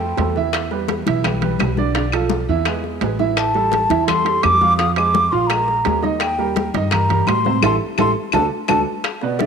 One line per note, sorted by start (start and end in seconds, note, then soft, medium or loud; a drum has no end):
0.00 0.15 F2 medium
0.00 0.12 A3 medium
0.00 0.12 A4 medium
0.00 0.12 C5 medium
0.00 0.37 G5 medium
0.00 high conga soft
0.17 1.01 E2 medium
0.17 0.32 A3 medium
0.17 0.32 A4 medium
0.17 0.32 C5 medium
0.17 high bongo soft
0.17 low bongo medium
0.17 high conga medium
0.17 high timbale medium
0.17 low timbale medium
0.36 0.65 E3 medium
0.36 0.65 E4 medium
0.36 0.66 E5 medium
0.36 high bongo soft
0.53 high bongo medium
0.53 high conga soft
0.53 high timbale loud
0.53 claves medium
0.71 1.00 G3 medium
0.71 1.01 G4 medium
0.71 1.01 B4 medium
0.71 high bongo soft
0.71 high conga soft
0.88 high bongo medium
0.88 high conga medium
0.88 high timbale medium
0.88 low timbale medium
1.06 1.56 B1 medium
1.06 1.21 E3 medium
1.06 1.21 E4 medium
1.06 1.22 E5 medium
1.06 high conga medium
1.06 high timbale medium
1.24 1.39 G3 medium
1.24 1.39 G4 medium
1.24 1.39 B4 medium
1.24 high bongo medium
1.24 high conga soft
1.24 low conga medium
1.24 high timbale medium
1.24 claves medium
1.41 1.71 G3 medium
1.41 1.71 G4 medium
1.41 1.71 B4 medium
1.41 high bongo soft
1.41 high conga soft
1.41 low conga medium
1.41 high timbale medium
1.59 2.43 B1 medium
1.59 high bongo soft
1.59 low bongo medium
1.59 high conga medium
1.59 high timbale medium
1.59 low timbale medium
1.59 claves medium
1.77 1.92 D3 medium
1.77 1.93 D4 medium
1.77 1.93 D5 medium
1.77 high bongo soft
1.77 high conga medium
1.95 2.10 D3 medium
1.95 2.10 D4 medium
1.95 2.10 D5 medium
1.95 high bongo medium
1.95 high conga soft
1.95 high timbale medium
2.12 2.42 F3 medium
2.12 2.43 F4 medium
2.12 2.43 A4 medium
2.12 high bongo soft
2.12 high conga soft
2.12 high timbale medium
2.12 claves medium
2.30 high bongo medium
2.30 high conga loud
2.30 low timbale medium
2.49 2.98 E2 medium
2.49 2.64 E3 medium
2.49 2.64 E4 medium
2.49 2.64 E5 medium
2.65 2.96 G#3 medium
2.65 2.96 G#4 medium
2.65 2.97 B4 medium
2.65 high bongo medium
2.65 high conga soft
2.65 high timbale medium
2.65 claves medium
2.84 high bongo soft
2.84 high conga soft
3.01 3.85 A1 medium
3.01 3.17 G#3 medium
3.01 3.17 G#4 medium
3.01 3.17 B4 medium
3.01 high bongo soft
3.01 low bongo medium
3.01 high conga medium
3.01 high timbale medium
3.01 low timbale medium
3.19 3.49 E3 medium
3.19 3.49 E4 medium
3.19 3.49 E5 medium
3.19 high bongo soft
3.19 high conga medium
3.37 4.05 A5 loud
3.37 high bongo medium
3.37 high timbale medium
3.37 claves medium
3.54 3.84 G3 medium
3.54 3.84 G4 medium
3.54 3.85 A4 medium
3.54 high bongo soft
3.54 high conga soft
3.72 high bongo medium
3.72 high conga medium
3.72 high timbale medium
3.72 low timbale medium
3.90 4.40 E2 medium
3.90 4.05 E3 medium
3.90 4.05 E4 medium
3.90 4.05 E5 medium
3.90 high conga medium
3.90 high timbale medium
4.07 4.22 G3 medium
4.07 4.23 G4 medium
4.07 4.23 A4 medium
4.07 4.44 C6 loud
4.07 high bongo medium
4.07 high conga soft
4.07 low conga medium
4.07 high timbale loud
4.07 claves medium
4.25 4.54 G3 medium
4.25 4.55 G4 medium
4.25 4.55 A4 medium
4.25 high bongo soft
4.25 high conga soft
4.25 high timbale medium
4.43 5.27 F2 medium
4.43 4.77 D6 loud
4.43 high bongo soft
4.43 low bongo medium
4.43 high conga medium
4.43 high timbale medium
4.43 low timbale medium
4.43 claves medium
4.61 4.76 F3 medium
4.61 4.76 F4 medium
4.61 4.77 F5 medium
4.61 high bongo soft
4.61 high conga medium
4.77 4.94 F3 medium
4.77 4.94 F4 medium
4.77 4.94 F5 medium
4.77 4.95 D#6 loud
4.77 high bongo medium
4.77 high conga soft
4.77 high timbale medium
4.96 5.26 G#3 medium
4.96 5.26 G#4 medium
4.96 5.26 C5 medium
4.96 5.33 D6 loud
4.96 high bongo soft
4.96 high conga soft
4.96 high timbale medium
4.96 claves medium
5.14 high bongo medium
5.14 high conga loud
5.14 low timbale medium
5.31 5.82 A#1 medium
5.31 5.47 F3 medium
5.31 5.47 F4 medium
5.31 5.47 F5 medium
5.31 5.49 C6 medium
5.47 5.79 G#3 medium
5.47 5.79 G#4 medium
5.47 5.80 A#4 medium
5.47 6.02 A#5 medium
5.47 high bongo medium
5.47 high conga soft
5.47 high timbale loud
5.47 claves medium
5.68 high bongo soft
5.68 high conga soft
5.85 6.69 D#2 medium
5.85 6.00 G#3 medium
5.85 6.00 G#4 medium
5.85 6.00 A#4 medium
5.85 high bongo soft
5.85 low bongo medium
5.85 high conga medium
5.85 high timbale medium
5.85 low timbale medium
6.02 6.32 D#3 medium
6.02 6.32 D#4 medium
6.02 6.32 D#5 medium
6.02 high bongo soft
6.02 high conga medium
6.19 6.70 G5 loud
6.19 high bongo medium
6.19 high conga soft
6.19 high timbale medium
6.19 claves medium
6.38 6.68 G3 medium
6.38 6.68 G4 medium
6.38 6.68 A#4 medium
6.38 high bongo soft
6.38 high conga soft
6.56 high bongo medium
6.56 high conga loud
6.56 high timbale medium
6.56 low timbale medium
6.74 7.24 G2 medium
6.74 6.89 D#3 medium
6.74 6.89 D#4 loud
6.74 6.89 D#5 medium
6.74 high conga medium
6.74 high timbale medium
6.91 7.07 G3 medium
6.91 7.07 G4 medium
6.91 7.07 A#4 medium
6.91 7.29 A#5 medium
6.91 high bongo medium
6.91 high conga soft
6.91 low conga medium
6.91 high timbale loud
6.91 claves medium
7.09 7.39 G3 medium
7.09 7.39 G4 medium
7.09 7.40 A#4 medium
7.09 high bongo soft
7.09 high conga soft
7.09 low conga medium
7.09 high timbale medium
7.27 7.60 A2 medium
7.27 7.63 C6 loud
7.27 high bongo soft
7.27 low bongo medium
7.27 high conga medium
7.27 high timbale loud
7.27 low timbale medium
7.27 claves medium
7.45 7.60 C3 medium
7.45 7.60 C4 medium
7.45 7.60 C5 medium
7.45 high bongo soft
7.45 high conga medium
7.62 7.76 A1 loud
7.62 7.74 E4 loud
7.62 7.74 G4 medium
7.62 7.74 A4 loud
7.62 7.76 C6 medium
7.62 high bongo loud
7.62 high conga loud
7.62 high timbale loud
7.62 claves loud
7.98 8.11 A1 medium
7.98 8.10 E4 medium
7.98 8.10 G4 loud
7.98 8.10 A4 loud
7.98 8.11 C6 loud
7.98 high bongo medium
7.98 high conga loud
7.98 high timbale loud
7.98 claves medium
8.32 8.47 D2 loud
8.32 8.45 D4 medium
8.32 8.45 F#4 medium
8.32 8.45 A4 medium
8.32 8.45 A5 medium
8.32 high bongo medium
8.32 high conga medium
8.32 high timbale loud
8.32 claves medium
8.68 8.82 D2 loud
8.68 8.81 D4 medium
8.68 8.81 F#4 medium
8.68 8.81 A4 medium
8.68 8.81 A5 loud
8.68 high bongo medium
8.68 high conga loud
8.68 high timbale loud
8.68 claves loud
9.04 high bongo medium
9.04 high conga soft
9.04 high timbale medium
9.04 claves medium
9.21 9.37 B2 medium
9.21 9.37 B3 medium
9.21 9.37 B4 medium
9.21 9.41 D5 medium
9.21 high bongo soft
9.21 high conga soft
9.39 9.46 D3 medium
9.39 9.46 D4 medium
9.39 9.46 D5 medium
9.39 9.46 E5 medium
9.39 high bongo medium
9.39 high conga medium
9.39 high timbale medium